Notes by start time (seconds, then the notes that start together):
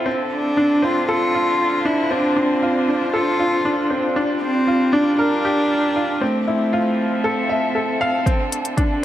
Already playing: C4 A4
0.06 D3 C4
0.29 D4
0.33 D4
0.57 D4
0.67 F4
0.83 C4 F4
1.09 F4 A4
1.34 F4
1.58 C5
1.85 D4 E4
2.11 C4 D4
2.36 C4 D4
2.62 F4
2.88 D4
3.13 F4 A4
3.39 F4
3.65 D4
3.90 C4
4.16 G3 D4
4.41 C4
4.67 F4
4.92 D4
5.09 A#4
5.18 D4 A#4
5.45 G4
5.96 F4
6.20 F3 A3 C4
6.41 C4
6.47 E4
6.73 F4
6.94 A4 E5
7.24 A4
7.49 E5
7.75 A4
8.01 F5
8.26 D3 C4, kick, closed hi-hat
8.39 D4
8.52 closed hi-hat
8.65 closed hi-hat
8.77 D4, kick, closed hi-hat